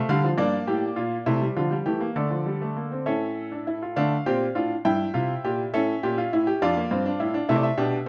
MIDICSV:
0, 0, Header, 1, 2, 480
1, 0, Start_track
1, 0, Key_signature, -1, "minor"
1, 0, Tempo, 597015
1, 303, Time_signature, 6, 3, 24, 8
1, 3192, Tempo, 584795
1, 6569, End_track
2, 0, Start_track
2, 0, Title_t, "Grand piano"
2, 0, Program_c, 0, 0
2, 0, Note_on_c, 0, 65, 82
2, 72, Note_on_c, 0, 50, 90
2, 73, Note_on_c, 0, 55, 76
2, 74, Note_on_c, 0, 77, 76
2, 185, Note_off_c, 0, 55, 0
2, 192, Note_on_c, 0, 53, 70
2, 216, Note_off_c, 0, 50, 0
2, 217, Note_off_c, 0, 77, 0
2, 284, Note_off_c, 0, 65, 0
2, 301, Note_on_c, 0, 62, 84
2, 302, Note_off_c, 0, 53, 0
2, 302, Note_on_c, 0, 43, 75
2, 304, Note_on_c, 0, 58, 80
2, 305, Note_on_c, 0, 74, 81
2, 447, Note_off_c, 0, 62, 0
2, 448, Note_off_c, 0, 43, 0
2, 540, Note_on_c, 0, 45, 78
2, 542, Note_on_c, 0, 67, 81
2, 686, Note_off_c, 0, 45, 0
2, 688, Note_off_c, 0, 67, 0
2, 773, Note_on_c, 0, 65, 66
2, 775, Note_on_c, 0, 46, 67
2, 921, Note_off_c, 0, 65, 0
2, 923, Note_off_c, 0, 46, 0
2, 992, Note_off_c, 0, 58, 0
2, 1015, Note_on_c, 0, 64, 85
2, 1016, Note_on_c, 0, 48, 75
2, 1017, Note_on_c, 0, 57, 72
2, 1131, Note_off_c, 0, 57, 0
2, 1137, Note_on_c, 0, 55, 57
2, 1163, Note_off_c, 0, 64, 0
2, 1164, Note_off_c, 0, 48, 0
2, 1252, Note_off_c, 0, 55, 0
2, 1257, Note_on_c, 0, 50, 62
2, 1259, Note_on_c, 0, 65, 63
2, 1260, Note_on_c, 0, 53, 55
2, 1373, Note_off_c, 0, 53, 0
2, 1374, Note_on_c, 0, 55, 63
2, 1405, Note_off_c, 0, 50, 0
2, 1406, Note_off_c, 0, 65, 0
2, 1490, Note_off_c, 0, 55, 0
2, 1493, Note_on_c, 0, 67, 70
2, 1494, Note_on_c, 0, 52, 64
2, 1495, Note_on_c, 0, 57, 58
2, 1612, Note_off_c, 0, 57, 0
2, 1612, Note_on_c, 0, 58, 61
2, 1644, Note_off_c, 0, 52, 0
2, 1644, Note_off_c, 0, 67, 0
2, 1704, Note_off_c, 0, 74, 0
2, 1731, Note_off_c, 0, 58, 0
2, 1734, Note_on_c, 0, 50, 64
2, 1736, Note_on_c, 0, 69, 64
2, 1736, Note_on_c, 0, 74, 57
2, 1738, Note_on_c, 0, 57, 60
2, 1853, Note_on_c, 0, 53, 55
2, 1855, Note_off_c, 0, 57, 0
2, 1973, Note_off_c, 0, 53, 0
2, 1978, Note_on_c, 0, 55, 57
2, 2096, Note_off_c, 0, 55, 0
2, 2104, Note_on_c, 0, 57, 56
2, 2219, Note_off_c, 0, 57, 0
2, 2223, Note_on_c, 0, 58, 47
2, 2340, Note_off_c, 0, 58, 0
2, 2345, Note_on_c, 0, 60, 51
2, 2441, Note_off_c, 0, 50, 0
2, 2441, Note_off_c, 0, 74, 0
2, 2442, Note_off_c, 0, 69, 0
2, 2460, Note_on_c, 0, 61, 64
2, 2461, Note_off_c, 0, 60, 0
2, 2461, Note_on_c, 0, 76, 59
2, 2464, Note_on_c, 0, 45, 64
2, 2464, Note_on_c, 0, 69, 63
2, 2816, Note_off_c, 0, 61, 0
2, 2827, Note_on_c, 0, 62, 50
2, 2947, Note_off_c, 0, 62, 0
2, 2952, Note_on_c, 0, 64, 59
2, 3069, Note_off_c, 0, 64, 0
2, 3074, Note_on_c, 0, 65, 54
2, 3168, Note_off_c, 0, 76, 0
2, 3170, Note_off_c, 0, 45, 0
2, 3170, Note_off_c, 0, 69, 0
2, 3187, Note_on_c, 0, 77, 71
2, 3188, Note_on_c, 0, 62, 90
2, 3189, Note_off_c, 0, 65, 0
2, 3189, Note_on_c, 0, 50, 70
2, 3189, Note_on_c, 0, 57, 74
2, 3339, Note_off_c, 0, 50, 0
2, 3339, Note_off_c, 0, 57, 0
2, 3339, Note_off_c, 0, 62, 0
2, 3432, Note_on_c, 0, 46, 70
2, 3432, Note_on_c, 0, 60, 75
2, 3433, Note_on_c, 0, 67, 89
2, 3582, Note_off_c, 0, 46, 0
2, 3582, Note_off_c, 0, 60, 0
2, 3582, Note_off_c, 0, 67, 0
2, 3669, Note_on_c, 0, 62, 61
2, 3670, Note_on_c, 0, 65, 72
2, 3673, Note_on_c, 0, 45, 61
2, 3821, Note_off_c, 0, 62, 0
2, 3822, Note_off_c, 0, 65, 0
2, 3823, Note_off_c, 0, 45, 0
2, 3892, Note_off_c, 0, 77, 0
2, 3913, Note_on_c, 0, 79, 74
2, 3915, Note_on_c, 0, 43, 72
2, 3915, Note_on_c, 0, 64, 87
2, 4065, Note_off_c, 0, 43, 0
2, 4151, Note_on_c, 0, 65, 75
2, 4153, Note_on_c, 0, 48, 63
2, 4302, Note_off_c, 0, 65, 0
2, 4304, Note_off_c, 0, 48, 0
2, 4401, Note_on_c, 0, 46, 73
2, 4403, Note_on_c, 0, 67, 80
2, 4549, Note_off_c, 0, 46, 0
2, 4551, Note_off_c, 0, 67, 0
2, 4616, Note_off_c, 0, 79, 0
2, 4617, Note_off_c, 0, 64, 0
2, 4641, Note_on_c, 0, 69, 84
2, 4642, Note_on_c, 0, 76, 70
2, 4643, Note_on_c, 0, 45, 75
2, 4644, Note_on_c, 0, 61, 80
2, 4790, Note_off_c, 0, 69, 0
2, 4791, Note_off_c, 0, 45, 0
2, 4884, Note_on_c, 0, 46, 76
2, 4885, Note_on_c, 0, 67, 85
2, 5000, Note_off_c, 0, 67, 0
2, 5005, Note_on_c, 0, 65, 73
2, 5032, Note_off_c, 0, 46, 0
2, 5120, Note_off_c, 0, 65, 0
2, 5130, Note_on_c, 0, 64, 76
2, 5132, Note_on_c, 0, 45, 69
2, 5243, Note_off_c, 0, 64, 0
2, 5244, Note_on_c, 0, 67, 81
2, 5278, Note_off_c, 0, 45, 0
2, 5342, Note_off_c, 0, 76, 0
2, 5343, Note_off_c, 0, 61, 0
2, 5360, Note_off_c, 0, 67, 0
2, 5366, Note_on_c, 0, 41, 71
2, 5366, Note_on_c, 0, 62, 78
2, 5367, Note_on_c, 0, 74, 78
2, 5370, Note_on_c, 0, 65, 93
2, 5481, Note_off_c, 0, 62, 0
2, 5486, Note_on_c, 0, 58, 66
2, 5514, Note_off_c, 0, 41, 0
2, 5600, Note_off_c, 0, 58, 0
2, 5606, Note_on_c, 0, 43, 71
2, 5607, Note_on_c, 0, 60, 69
2, 5721, Note_off_c, 0, 60, 0
2, 5724, Note_on_c, 0, 62, 73
2, 5753, Note_off_c, 0, 43, 0
2, 5839, Note_off_c, 0, 62, 0
2, 5840, Note_on_c, 0, 45, 73
2, 5842, Note_on_c, 0, 64, 74
2, 5957, Note_off_c, 0, 64, 0
2, 5959, Note_on_c, 0, 62, 78
2, 5987, Note_off_c, 0, 45, 0
2, 6059, Note_off_c, 0, 74, 0
2, 6060, Note_off_c, 0, 65, 0
2, 6074, Note_off_c, 0, 62, 0
2, 6080, Note_on_c, 0, 64, 82
2, 6080, Note_on_c, 0, 76, 75
2, 6082, Note_on_c, 0, 48, 74
2, 6082, Note_on_c, 0, 57, 91
2, 6134, Note_off_c, 0, 76, 0
2, 6137, Note_on_c, 0, 74, 66
2, 6192, Note_off_c, 0, 74, 0
2, 6197, Note_on_c, 0, 76, 77
2, 6226, Note_off_c, 0, 64, 0
2, 6227, Note_off_c, 0, 48, 0
2, 6227, Note_off_c, 0, 57, 0
2, 6315, Note_on_c, 0, 62, 90
2, 6316, Note_on_c, 0, 47, 81
2, 6316, Note_on_c, 0, 67, 74
2, 6462, Note_off_c, 0, 47, 0
2, 6462, Note_off_c, 0, 62, 0
2, 6462, Note_off_c, 0, 67, 0
2, 6569, Note_off_c, 0, 76, 0
2, 6569, End_track
0, 0, End_of_file